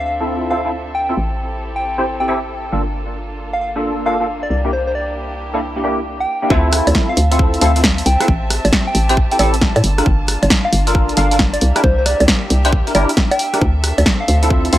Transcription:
Already playing: D2 C4 D4 A4 E5
0.06 F5
0.20 C4 E4 F4 A4
0.50 C4 E4 F4 A4 F5
0.65 C4 E4 F4 A4
0.95 G5
1.09 C4 E4 F4 A4
1.17 A1 C4 E4 G4
1.76 G5
1.98 C4 E4 G4 C5
2.20 C4 E4 G4 A4 G5
2.28 C4 E4 G4 A4 G5
2.72 G1 A#3 D4 F4 A4
3.53 F5
3.61 F5
3.76 A#3 D4 F4 A4
4.06 A#3 D4 F4 A4 F5
4.20 A#3 D4 F4 A4
4.43 D5
4.50 C2 E4 G4 D5
4.65 A#3 D4 E4 G4
4.73 C5
4.87 C5
4.95 D5
5.54 A#3 D4 E4 A4
5.76 A#3 D4 E4 G4
5.84 A#3 D4 E4 G4
6.20 G5
6.42 A#3 D4 E4 G4
6.50 D2 C4 E4 F4 A4 E5 A5, kick
6.73 cross-stick, open hi-hat
6.87 D2, closed hi-hat, high bongo
6.95 kick, snare
7.09 F5
7.17 D2 F5, open hi-hat
7.31 C4 E4 F4 A4, closed hi-hat
7.39 kick
7.54 closed hi-hat
7.61 D2 C4 E4 F4 A4 F5, open hi-hat
7.76 C4 E4 F4 A4, closed hi-hat
7.84 kick, snare
7.98 closed hi-hat
8.06 C2 G5, open hi-hat
8.20 C4 E4 F4 A4, cross-stick, closed hi-hat
8.28 A1 G4, kick
8.50 cross-stick, open hi-hat
8.65 A1, closed hi-hat, high bongo
8.73 kick, snare
8.87 G5
8.95 A1, open hi-hat
9.09 C4 E4 G4 C5, closed hi-hat
9.17 kick
9.31 C4 E4 G4 A4 G5, closed hi-hat
9.39 A1 C4 E4 G4 A4 G5, open hi-hat, high bongo
9.54 closed hi-hat
9.62 kick, snare
9.76 A2, closed hi-hat, high bongo
9.83 G1 A#3 D4 F4, open hi-hat
9.98 D4 F4 A4 A#4, cross-stick, closed hi-hat
10.06 G1, kick
10.28 cross-stick, open hi-hat
10.43 G1, closed hi-hat, high bongo
10.50 kick, snare
10.65 F5
10.73 G1 F5, open hi-hat
10.87 D4 F4 A4 A#4, closed hi-hat
10.95 kick
11.09 closed hi-hat
11.17 G1 D4 F4 A4 A#4 F5, open hi-hat
11.31 D4 F4 A4 A#4, closed hi-hat
11.39 kick, snare
11.53 D5, closed hi-hat
11.61 C2 G4 E5, open hi-hat
11.76 D4 E4 G4 A#4, cross-stick, closed hi-hat
11.84 C2 C5, kick
11.98 C5
12.06 D5, cross-stick, open hi-hat
12.20 C2, closed hi-hat, high bongo
12.28 kick, snare
12.50 C2, open hi-hat
12.65 D4 E4 G4 C5, closed hi-hat
12.73 kick
12.87 D4 E4 G4 A#4, closed hi-hat
12.95 G1 D4 E4 G4 A#4, open hi-hat, high bongo
13.09 closed hi-hat
13.17 kick, snare
13.31 G5, closed hi-hat, high bongo
13.39 open hi-hat
13.54 D4 E4 G4 A#4, cross-stick, closed hi-hat
13.61 D2 C4 D4 A4, kick
13.84 cross-stick, open hi-hat
13.98 D2, closed hi-hat, high bongo
14.06 kick, snare
14.21 F5
14.28 D2 F5, open hi-hat
14.43 C4 E4 F4 A4, closed hi-hat
14.50 kick
14.65 closed hi-hat
14.73 D2 C4 E4 F4 A4 F5, open hi-hat

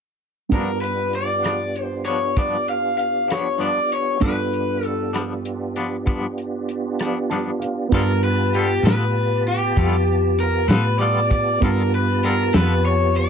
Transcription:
0.49 G2 F3 B3 D4 F4 G4 A5, kick, closed hi-hat
0.53 D4 A#4
0.81 B4, closed hi-hat
1.13 D5, closed hi-hat
1.43 F3 B3 D4, cross-stick, closed hi-hat
1.76 closed hi-hat
1.82 C5
2.05 F3 B3 D4 C#5, closed hi-hat
2.37 G2 F3 B3 D4 D5, kick, closed hi-hat
2.68 F5, closed hi-hat
2.98 F5, closed hi-hat
3.28 F3 B3 D4 C#5, cross-stick, closed hi-hat
3.58 G2 F3 B3 D4, closed hi-hat
3.62 D5
3.92 C#5, closed hi-hat
4.20 G2 F3 B3 D4 F4 G4 B4, kick, closed hi-hat
4.24 F4 A4
4.53 closed hi-hat
4.83 A4, closed hi-hat
5.13 F3 B3 D4, cross-stick, closed hi-hat
5.45 closed hi-hat
5.76 F3 B3 D4, closed hi-hat
6.06 G2 F3 B3 D4, kick, closed hi-hat
6.38 closed hi-hat
6.69 closed hi-hat
6.99 F3 B3 D4, cross-stick, closed hi-hat
7.30 G2 F3 B3 D4 A5, closed hi-hat
7.60 F5, closed hi-hat
7.89 G2 G3 B3 D4 F4 A5, kick, closed hi-hat
7.93 B3 F4 G4 A4 A#4 A5
8.24 B4
8.54 G3 B3 F4 G4 A4, closed hi-hat
8.83 A2 F4 A4 B4, snare, closed hi-hat
8.88 B3
9.47 G4, closed hi-hat
9.76 F2 G3 B3 F4 A4, kick, closed hi-hat
10.38 A#4, closed hi-hat
10.68 A2 B3 F4 A4 B4, snare, closed hi-hat
10.99 G3 B3 F4 A4 D5
11.31 D5, kick, closed hi-hat
11.60 G2 G3 B3 D4 F4 G4 A#4 A5, kick, closed hi-hat
11.64 F4 A4 A5
11.95 B4
12.23 G3 B3 F4 A4 A#4, closed hi-hat
12.53 F2 B3 F4 A4 B4, snare, closed hi-hat
12.85 C#5
13.15 D5, closed hi-hat

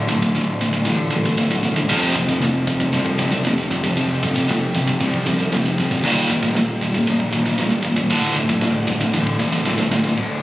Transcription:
Already playing: D2 A2 D3 A3 D4 F4
0.08 D1 D2 A2
0.21 D2 A2
0.35 D1 D2 A2
0.61 D1 D2 A2
0.74 D2 A2
0.86 A1 D2 A2 D3
1.12 A1 D2 A2
1.24 D2 A2
1.37 D1 D2 A2
1.50 D2 A2
1.63 E1 D2 A2
1.76 D2 A2
1.88 F1 F2 C3 F3 C4 G4 A4, kick, crash
2.14 F1 F2 C3, kick
2.28 F2 C3, kick
2.39 F1 F2 C3, snare, crash
2.66 F1 F2 C3, kick
2.80 F2 C3, kick
2.92 C2 F2 C3, kick, crash
2.96 F3
3.06 kick
3.19 C2 F2 C3, kick
3.31 F2 C3
3.44 F1 F2 C3, snare, crash
3.58 F2 C3
3.71 F1 F2 C3, kick
3.84 F2 C3, kick
3.97 F1 F2 C3 F3, kick, crash
4.22 F1 F2 C3, kick
4.36 F2 C3, kick
4.49 F1 F2 C3, snare, crash
4.75 F1 F2 C3, kick
4.87 F2 C3, kick
5.00 C2 F2 C3, kick, crash
5.04 F3
5.14 kick
5.26 C2 F2 C3, kick
5.38 F2 C3
5.52 F1 F2 C3, snare, crash
5.65 F2 C3
5.78 D1 F2 C3, kick
5.91 F2 C3, kick
6.02 D#1 D#2 A#2 D#3 A#3 F4, kick, crash
6.30 D#1 D#2 A#2, kick
6.43 D#2 A#2, kick
6.54 D#1 D#2 A#2, snare, crash
6.81 D#1 D#2 A#2, kick
6.94 D#2 A#2, kick
7.06 A#1 D#2 A#2, kick, crash
7.11 D#3
7.20 kick
7.33 A#1 D#2 A#2, kick
7.49 D#2 A#2
7.59 D#1 D#2 A#2, snare, crash
7.74 D#2 A#2
7.82 D#1 D#2 A#2, kick
7.88 D#2 A#2
7.98 D#2 A#2, kick
8.10 D1 D2 A2 D3 A3, kick, crash
8.14 D4
8.36 D1 D2 A2, kick
8.49 D2 A2, kick
8.61 D1 D2 A2, snare, crash
8.88 D1 D2 A2, kick
9.01 D2 A2, kick
9.13 A1 D2 A2 D3, kick, crash
9.27 kick
9.39 A1 D2 A2, kick
9.52 D2 A2
9.65 D1 D2 A2, snare
9.77 D2 A2, snare
9.89 D1 D2 A2, snare
10.02 D2 A2
10.06 snare
10.16 D1 D2 A2 D3 A3 D4 F4, kick, china

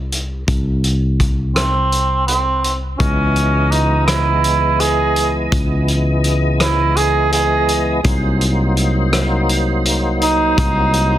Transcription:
Already playing: C2
0.12 closed hi-hat
0.48 C2, kick, closed hi-hat
0.84 closed hi-hat
1.20 kick, closed hi-hat
1.56 C4, cross-stick, closed hi-hat
1.92 closed hi-hat
2.27 C4, closed hi-hat
2.64 closed hi-hat
2.98 C#2 E3 G#3 B3 C#4 D#5, kick, closed hi-hat
3.36 closed hi-hat
3.71 D#4, closed hi-hat
4.06 E4, cross-stick, closed hi-hat
4.44 closed hi-hat
4.80 G#4, closed hi-hat
5.16 closed hi-hat
5.52 C#2, kick, closed hi-hat
5.88 closed hi-hat
6.24 closed hi-hat
6.60 E4, cross-stick, closed hi-hat
6.97 G#4, closed hi-hat
7.32 G#4, closed hi-hat
7.68 closed hi-hat
8.03 C2 F#3 A#3 D#4 C5, kick, closed hi-hat
8.41 closed hi-hat
8.77 closed hi-hat
9.13 cross-stick, closed hi-hat
9.49 closed hi-hat
9.85 closed hi-hat
10.22 D#4, closed hi-hat
10.58 C2 D#4, kick, closed hi-hat
10.93 closed hi-hat

